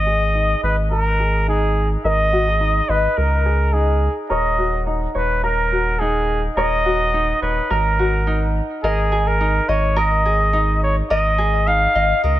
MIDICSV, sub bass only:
0, 0, Header, 1, 2, 480
1, 0, Start_track
1, 0, Tempo, 566038
1, 1732, Time_signature, 4, 2, 24, 8
1, 10512, End_track
2, 0, Start_track
2, 0, Title_t, "Sub bass"
2, 0, Program_c, 0, 38
2, 0, Note_on_c, 0, 32, 96
2, 465, Note_off_c, 0, 32, 0
2, 532, Note_on_c, 0, 32, 100
2, 1665, Note_off_c, 0, 32, 0
2, 1730, Note_on_c, 0, 32, 102
2, 2384, Note_off_c, 0, 32, 0
2, 2448, Note_on_c, 0, 32, 94
2, 2606, Note_off_c, 0, 32, 0
2, 2692, Note_on_c, 0, 37, 79
2, 3461, Note_off_c, 0, 37, 0
2, 3647, Note_on_c, 0, 27, 92
2, 4302, Note_off_c, 0, 27, 0
2, 4366, Note_on_c, 0, 27, 103
2, 5502, Note_off_c, 0, 27, 0
2, 5565, Note_on_c, 0, 27, 102
2, 6221, Note_off_c, 0, 27, 0
2, 6290, Note_on_c, 0, 27, 93
2, 6447, Note_off_c, 0, 27, 0
2, 6532, Note_on_c, 0, 32, 84
2, 7301, Note_off_c, 0, 32, 0
2, 7488, Note_on_c, 0, 32, 98
2, 8143, Note_off_c, 0, 32, 0
2, 8211, Note_on_c, 0, 32, 98
2, 9344, Note_off_c, 0, 32, 0
2, 9414, Note_on_c, 0, 32, 97
2, 10066, Note_off_c, 0, 32, 0
2, 10133, Note_on_c, 0, 32, 98
2, 10289, Note_off_c, 0, 32, 0
2, 10375, Note_on_c, 0, 37, 78
2, 10512, Note_off_c, 0, 37, 0
2, 10512, End_track
0, 0, End_of_file